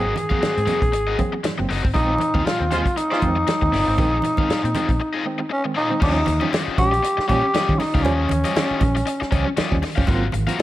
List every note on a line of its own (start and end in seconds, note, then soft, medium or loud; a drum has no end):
0.00 0.13 G#1 loud
0.00 0.12 C4 medium
0.00 0.12 F#4 medium
0.00 0.16 G#4 medium
0.00 0.12 A#4 medium
0.00 0.13 D#5 medium
0.16 0.32 G#2 medium
0.16 0.32 D#3 medium
0.16 1.66 G#4 medium
0.16 muted overdriven electric guitar stroke soft
0.16 closed hi-hat medium
0.16 muted conga soft
0.16 high conga medium
0.30 0.43 F#3 medium
0.30 0.43 A#3 medium
0.30 0.43 C4 medium
0.30 0.39 C4 medium
0.30 0.40 F#4 medium
0.30 0.41 A#4 medium
0.30 0.41 F5 medium
0.30 muted fingered electric bass stroke soft
0.30 kick medium
0.30 high conga medium
0.40 0.57 G#2 medium
0.40 0.57 D#3 medium
0.40 0.58 C4 medium
0.40 0.55 F#4 medium
0.40 0.55 A#4 medium
0.40 0.55 F5 medium
0.40 muted fingered electric bass stroke soft
0.40 snare loud
0.40 closed hi-hat medium
0.40 muted conga soft
0.40 high conga medium
0.55 0.66 G#2 medium
0.55 muted overdriven electric guitar stroke soft
0.55 closed hi-hat medium
0.66 0.82 F#3 medium
0.66 0.81 A#3 medium
0.66 0.80 C4 medium
0.66 0.81 C4 medium
0.66 0.80 F#4 medium
0.66 0.80 A#4 medium
0.66 0.79 D#5 medium
0.66 closed hi-hat medium
0.66 muted conga soft
0.66 high conga medium
0.66 low conga medium
0.81 0.94 A#1 medium
0.81 0.87 A#3 soft
0.81 0.87 C4 soft
0.81 muted overdriven electric guitar stroke soft
0.81 kick medium
0.81 closed hi-hat soft
0.93 1.15 G#1 medium
0.93 muted overdriven electric guitar stroke soft
0.93 closed hi-hat medium
0.93 muted conga soft
1.07 1.18 C4 medium
1.07 1.18 F#4 medium
1.07 1.18 A#4 medium
1.07 1.19 D#5 medium
1.18 1.33 F#3 loud
1.18 1.33 A#3 medium
1.18 1.34 C4 loud
1.18 muted overdriven electric guitar stroke soft
1.18 kick medium
1.18 closed hi-hat medium
1.18 muted conga soft
1.18 high conga medium
1.33 muted overdriven electric guitar stroke soft
1.44 1.59 G#2 medium
1.44 1.59 D#3 medium
1.44 muted overdriven electric guitar stroke soft
1.44 snare loud
1.44 closed hi-hat loud
1.44 muted conga soft
1.44 high conga medium
1.58 1.68 F#1 medium
1.58 1.70 F#3 medium
1.58 1.69 A#3 medium
1.58 1.68 C4 medium
1.58 muted overdriven electric guitar stroke soft
1.69 1.82 F#1 medium
1.69 1.76 A#3 soft
1.69 1.86 C4 medium
1.69 1.76 C4 soft
1.69 1.84 F#4 medium
1.69 1.83 A#4 medium
1.69 1.82 D#5 loud
1.69 snare soft
1.69 open hi-hat medium
1.84 1.94 G#1 medium
1.84 muted overdriven electric guitar stroke soft
1.84 kick loud
1.94 2.16 A#1 loud
1.94 2.10 D#3 medium
1.94 2.10 G#3 medium
1.94 2.11 C4 loud
1.94 2.10 C4 loud
1.94 2.47 D#4 loud
1.94 2.12 F4 medium
1.94 2.12 G#4 medium
1.94 2.12 D#5 medium
1.94 kick loud
1.94 closed hi-hat medium
1.94 low conga medium
2.18 2.36 A#2 medium
2.18 muted overdriven electric guitar stroke soft
2.18 closed hi-hat medium
2.18 high conga medium
2.34 2.44 D#2 medium
2.34 2.46 D#3 medium
2.34 2.47 G#3 medium
2.34 2.47 C4 medium
2.34 2.44 C4 medium
2.34 2.45 F4 medium
2.34 2.45 G#4 medium
2.34 2.45 F5 medium
2.34 kick loud
2.34 high conga medium
2.45 2.61 A#2 medium
2.45 2.62 C4 medium
2.45 2.98 F4 medium
2.45 2.60 F4 medium
2.45 2.60 G#4 medium
2.45 2.60 F5 medium
2.45 muted fingered electric bass stroke soft
2.45 snare loud
2.45 closed hi-hat medium
2.45 high conga medium
2.60 2.81 D#2 medium
2.60 muted overdriven electric guitar stroke medium
2.71 2.86 D#3 medium
2.71 2.81 G#3 medium
2.71 2.85 G#3 medium
2.71 2.84 C4 medium
2.71 2.81 F4 medium
2.71 2.85 F4 medium
2.71 2.85 G#4 medium
2.71 2.81 C5 loud
2.71 2.85 D#5 medium
2.71 closed hi-hat medium
2.71 muted conga soft
2.71 high conga medium
2.71 low conga medium
2.86 2.90 G#3 soft
2.86 2.90 C4 soft
2.86 muted overdriven electric guitar stroke soft
2.86 kick medium
2.86 closed hi-hat medium
2.96 5.51 D#4 loud
2.96 muted overdriven electric guitar stroke soft
2.96 closed hi-hat medium
2.96 muted conga soft
3.10 3.27 G#3 medium
3.10 3.21 C4 medium
3.10 3.27 F4 medium
3.10 3.22 F4 medium
3.10 3.22 G#4 medium
3.10 3.27 C5 loud
3.10 3.23 D#5 medium
3.10 snare soft
3.22 3.43 F2 medium
3.22 3.37 D#3 medium
3.22 3.37 G#3 medium
3.22 3.37 C4 loud
3.22 muted overdriven electric guitar stroke soft
3.22 kick medium
3.22 closed hi-hat medium
3.22 muted conga soft
3.22 high conga medium
3.36 muted overdriven electric guitar stroke medium
3.47 muted overdriven electric guitar stroke soft
3.47 snare loud
3.47 closed hi-hat medium
3.47 muted conga soft
3.47 high conga medium
3.61 3.71 D#2 medium
3.61 3.73 D#3 medium
3.61 3.73 G#3 medium
3.61 3.74 C4 medium
3.61 muted overdriven electric guitar stroke soft
3.61 kick medium
3.73 3.85 G1 medium
3.73 3.88 A#2 medium
3.73 3.94 C4 medium
3.73 3.88 F4 loud
3.73 3.87 G#4 medium
3.73 3.86 D#5 medium
3.73 snare soft
3.73 open hi-hat medium
3.87 3.97 G#1 loud
3.87 3.97 D#3 medium
3.87 3.98 G#3 medium
3.87 3.98 C4 medium
3.87 muted overdriven electric guitar stroke soft
3.98 4.19 A#1 loud
3.98 4.13 D#3 medium
3.98 4.13 G#3 medium
3.98 4.15 C4 medium
3.98 4.14 C4 medium
3.98 4.15 F4 medium
3.98 4.15 G#4 medium
3.98 4.16 D#5 medium
3.98 kick loud
3.98 closed hi-hat medium
3.98 low conga medium
4.22 4.39 A#2 medium
4.22 muted overdriven electric guitar stroke soft
4.22 closed hi-hat medium
4.22 high conga medium
4.37 4.50 D#3 medium
4.37 4.50 G#3 medium
4.37 4.50 C4 medium
4.37 4.48 C4 medium
4.37 4.49 F4 medium
4.37 4.49 G#4 medium
4.37 4.49 F5 medium
4.37 muted fingered electric bass stroke soft
4.37 kick loud
4.37 high conga medium
4.50 4.64 A#2 medium
4.50 4.66 C4 medium
4.50 4.65 F4 medium
4.50 4.64 G#4 medium
4.50 4.64 F5 medium
4.50 muted fingered electric bass stroke soft
4.50 snare loud
4.50 closed hi-hat medium
4.50 high conga medium
4.64 4.73 A#2 medium
4.64 muted overdriven electric guitar stroke soft
4.64 closed hi-hat medium
4.75 4.89 D#3 medium
4.75 4.88 G#3 medium
4.75 4.88 C4 medium
4.75 4.88 F4 medium
4.75 4.89 G#4 medium
4.75 4.88 D#5 medium
4.75 closed hi-hat medium
4.75 muted conga soft
4.75 high conga medium
4.75 low conga medium
4.89 4.98 A#1 medium
4.89 4.94 G#3 soft
4.89 4.94 C4 soft
4.89 muted overdriven electric guitar stroke soft
4.89 kick medium
4.89 closed hi-hat soft
5.00 muted overdriven electric guitar stroke soft
5.13 5.23 C4 medium
5.13 5.24 F4 medium
5.13 5.24 G#4 medium
5.13 5.25 D#5 medium
5.25 5.40 D#3 medium
5.25 5.40 G#3 medium
5.25 5.41 C4 loud
5.25 muted overdriven electric guitar stroke soft
5.39 muted overdriven electric guitar stroke soft
5.50 5.63 C#4 medium
5.50 muted overdriven electric guitar stroke soft
5.64 5.77 D#3 medium
5.64 5.77 G#3 medium
5.64 5.77 C4 medium
5.64 muted overdriven electric guitar stroke soft
5.75 5.91 A#2 medium
5.75 5.92 C4 medium
5.75 6.00 D#4 medium
5.75 5.90 F4 medium
5.75 5.89 G#4 medium
5.75 5.89 D#5 medium
5.90 6.02 D#3 medium
5.90 6.02 G#3 medium
5.90 6.02 C4 medium
5.90 muted overdriven electric guitar stroke soft
6.00 6.23 D#2 loud
6.00 6.17 F3 medium
6.00 6.17 G3 medium
6.00 6.17 C#4 medium
6.00 6.17 C#4 loud
6.00 6.49 D#4 medium
6.00 6.18 F4 medium
6.00 6.18 G4 medium
6.00 6.18 D#5 loud
6.00 kick loud
6.00 crash loud
6.00 low conga medium
6.26 6.39 D#2 loud
6.26 6.42 D#3 medium
6.26 muted overdriven electric guitar stroke soft
6.26 closed hi-hat medium
6.26 muted conga soft
6.26 high conga medium
6.40 6.53 F3 medium
6.40 6.53 G3 medium
6.40 6.54 C#4 medium
6.40 6.50 C#4 medium
6.40 6.51 F4 medium
6.40 6.52 G4 medium
6.40 6.51 D#5 medium
6.40 high conga medium
6.52 6.67 D#3 medium
6.52 6.76 C#4 medium
6.52 6.76 F4 medium
6.52 6.76 G4 medium
6.52 6.77 D#5 medium
6.52 snare loud
6.52 closed hi-hat loud
6.52 muted conga soft
6.52 high conga medium
6.68 muted fingered electric bass stroke medium
6.77 6.99 A#1 medium
6.77 6.92 F3 medium
6.77 6.91 G3 medium
6.77 6.92 C#4 medium
6.77 7.25 G4 loud
6.77 muted overdriven electric guitar stroke soft
6.77 kick medium
6.77 closed hi-hat medium
6.77 muted conga soft
6.77 high conga loud
6.77 low conga medium
6.92 muted overdriven electric guitar stroke soft
6.92 closed hi-hat medium
7.03 muted overdriven electric guitar stroke soft
7.03 closed hi-hat medium
7.17 muted overdriven electric guitar stroke medium
7.17 muted fingered electric bass stroke medium
7.17 snare soft
7.28 7.41 A#2 loud
7.28 7.43 F3 medium
7.28 7.44 G3 medium
7.28 7.45 C#4 loud
7.28 7.44 C#4 loud
7.28 7.43 F4 medium
7.28 7.80 G4 loud
7.28 7.42 G4 loud
7.28 7.41 D#5 medium
7.28 kick medium
7.28 closed hi-hat medium
7.28 high conga medium
7.43 muted overdriven electric guitar stroke soft
7.54 7.70 C#4 medium
7.54 7.71 F4 medium
7.54 7.71 G4 medium
7.54 7.71 D#5 medium
7.54 snare loud
7.54 closed hi-hat medium
7.54 muted conga soft
7.54 high conga medium
7.69 7.78 D#3 loud
7.69 7.80 F3 medium
7.69 7.80 G3 medium
7.69 7.81 C#4 medium
7.69 kick medium
7.78 7.94 D#3 medium
7.78 8.05 D#4 medium
7.78 muted overdriven electric guitar stroke soft
7.78 snare soft
7.78 open hi-hat medium
7.78 muted conga soft
7.93 8.05 C#2 loud
7.93 8.04 F3 medium
7.93 8.04 G3 medium
7.93 8.04 C#4 medium
7.93 8.04 C#4 soft
7.93 8.05 F4 medium
7.93 8.05 G4 medium
7.93 8.04 F5 medium
7.93 kick loud
8.04 8.26 D#2 loud
8.04 8.19 F3 medium
8.04 8.19 G3 medium
8.04 9.57 C#4 medium
8.04 8.20 C#4 loud
8.04 8.26 C#4 medium
8.04 8.26 F4 loud
8.04 8.26 G4 medium
8.04 8.27 D#5 loud
8.04 closed hi-hat medium
8.04 muted conga soft
8.04 low conga medium
8.29 8.42 D#2 loud
8.29 8.45 D#3 medium
8.29 muted overdriven electric guitar stroke soft
8.29 closed hi-hat medium
8.29 muted conga soft
8.29 high conga medium
8.44 8.56 F3 medium
8.44 8.56 G3 medium
8.44 8.56 C#4 medium
8.44 8.54 C#4 medium
8.44 8.55 F4 medium
8.44 8.55 G4 medium
8.44 8.55 D#5 medium
8.44 closed hi-hat medium
8.44 high conga medium
8.55 8.70 D#3 medium
8.55 8.79 C#4 medium
8.55 8.79 F4 medium
8.55 8.80 G4 loud
8.55 8.80 D#5 medium
8.55 snare loud
8.55 closed hi-hat loud
8.55 muted conga soft
8.55 high conga medium
8.71 muted fingered electric bass stroke soft
8.81 9.02 A#1 medium
8.81 8.96 F3 medium
8.81 8.94 G3 medium
8.81 8.94 C#4 medium
8.81 muted overdriven electric guitar stroke soft
8.81 kick medium
8.81 closed hi-hat medium
8.81 muted conga soft
8.81 high conga medium
8.81 low conga medium
8.95 9.00 G3 soft
8.95 9.00 C#4 soft
8.95 muted overdriven electric guitar stroke soft
8.95 closed hi-hat medium
9.06 muted overdriven electric guitar stroke soft
9.06 closed hi-hat medium
9.20 muted overdriven electric guitar stroke soft
9.20 muted fingered electric bass stroke soft
9.20 snare soft
9.31 9.44 C#2 medium
9.31 9.46 F3 loud
9.31 9.46 G3 medium
9.31 9.48 C#4 loud
9.31 9.46 C#4 loud
9.31 9.46 F4 medium
9.31 9.45 G4 medium
9.31 9.44 D#5 medium
9.31 kick medium
9.31 closed hi-hat medium
9.31 high conga medium
9.46 muted overdriven electric guitar stroke medium
9.57 9.73 C#4 medium
9.57 9.74 F4 medium
9.57 9.74 G4 medium
9.57 9.74 D#5 medium
9.57 muted fingered electric bass stroke soft
9.57 snare loud
9.57 closed hi-hat loud
9.57 muted conga soft
9.57 high conga medium
9.71 9.81 D#2 medium
9.71 9.83 F3 medium
9.71 9.83 G3 medium
9.71 9.83 C#4 medium
9.71 kick medium
9.82 9.97 D#3 medium
9.82 muted overdriven electric guitar stroke soft
9.82 snare soft
9.82 open hi-hat medium
9.82 muted conga soft
9.96 10.07 G1 medium
9.96 10.09 F3 medium
9.96 10.09 G3 medium
9.96 10.09 C#4 medium
9.96 10.06 C#4 medium
9.96 10.07 F4 medium
9.96 10.07 G4 medium
9.96 10.06 F5 medium
9.96 kick loud
10.07 10.29 G#1 loud
10.07 10.22 F#3 medium
10.07 10.22 A#3 medium
10.07 10.24 C4 medium
10.07 10.23 C4 medium
10.07 10.23 F4 loud
10.07 10.24 F#4 medium
10.07 10.24 A#4 medium
10.07 10.24 F5 medium
10.07 kick loud
10.07 closed hi-hat medium
10.07 low conga medium
10.32 10.45 G#1 loud
10.32 10.48 G#2 medium
10.32 10.48 D#3 medium
10.32 muted overdriven electric guitar stroke soft
10.32 closed hi-hat medium
10.32 high conga medium
10.47 10.59 F#3 medium
10.47 10.59 A#3 medium
10.47 10.59 C4 medium
10.47 10.57 C4 soft
10.47 10.59 F4 medium
10.47 10.58 F#4 medium
10.47 10.58 A#4 medium
10.47 10.58 F5 medium
10.47 closed hi-hat medium
10.47 high conga medium
10.58 10.62 G#2 medium
10.58 10.62 D#3 medium
10.58 10.62 C4 medium